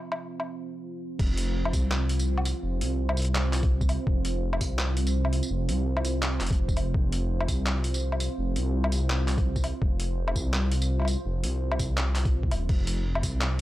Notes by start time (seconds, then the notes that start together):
Already playing: C4 F4 C5
0.12 low woodblock
0.40 low woodblock
1.19 F1, kick, crash
1.38 closed hi-hat
1.65 low woodblock
1.73 C2, kick, closed hi-hat, tambourine
1.91 clap
2.09 closed hi-hat
2.19 closed hi-hat, tambourine
2.38 low woodblock
2.45 closed hi-hat, tambourine
2.63 F1
2.81 C2, closed hi-hat
3.09 low woodblock
3.17 C2, closed hi-hat, tambourine
3.20 closed hi-hat
3.22 closed hi-hat
3.25 closed hi-hat
3.35 clap
3.53 clap, closed hi-hat
3.63 kick, closed hi-hat
3.81 kick, tambourine
3.89 closed hi-hat, low woodblock
4.07 F1, kick
4.25 closed hi-hat
4.53 low woodblock
4.61 C2, kick, closed hi-hat, tambourine
4.79 clap
4.97 closed hi-hat
5.07 closed hi-hat, tambourine
5.25 low woodblock
5.33 closed hi-hat
5.43 tambourine
5.51 F1
5.69 C2, closed hi-hat
5.97 low woodblock
6.05 C2, closed hi-hat, tambourine
6.22 clap
6.41 F1, clap, closed hi-hat
6.47 closed hi-hat
6.51 kick, closed hi-hat
6.53 closed hi-hat
6.68 kick, tambourine
6.77 closed hi-hat, low woodblock
6.94 F1, kick
7.12 closed hi-hat
7.41 low woodblock
7.48 C2, kick, closed hi-hat, tambourine
7.66 clap
7.84 closed hi-hat
7.94 closed hi-hat, tambourine
8.12 low woodblock
8.20 closed hi-hat, tambourine
8.38 F1
8.56 C2, closed hi-hat
8.84 low woodblock
8.92 C2, closed hi-hat, tambourine
9.10 clap
9.28 clap, closed hi-hat
9.38 kick, closed hi-hat
9.56 kick, tambourine
9.64 closed hi-hat, low woodblock
9.82 F1, kick
10.00 closed hi-hat
10.28 low woodblock
10.36 C2, kick, tambourine
10.54 clap
10.72 closed hi-hat
10.82 closed hi-hat, tambourine
11.00 low woodblock
11.02 low woodblock
11.05 closed hi-hat, tambourine, low woodblock
11.26 F1
11.43 C2, closed hi-hat
11.72 low woodblock
11.79 C2, kick, closed hi-hat, tambourine
11.97 clap
12.15 clap, closed hi-hat
12.25 kick, closed hi-hat
12.43 kick
12.51 D#1, closed hi-hat, low woodblock
12.69 F1, kick, crash
12.87 closed hi-hat
13.15 low woodblock
13.23 C2, kick, closed hi-hat, tambourine
13.41 clap